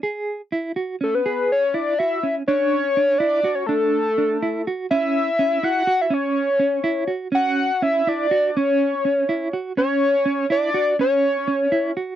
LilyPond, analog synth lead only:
\new Staff \with { instrumentName = "Analog synth lead" } { \time 5/8 \key cis \phrygian \tempo 4 = 123 r2 a'16 b'16~ | b'8 cis''8 d''8 e''8. r16 | cis''4. d''8. cis''16 | a'2 r8 |
e''4. fis''8. e''16 | cis''2 r8 | fis''4 e''8 d''4 | cis''2 r8 |
cis''4. d''4 | cis''2 r8 | }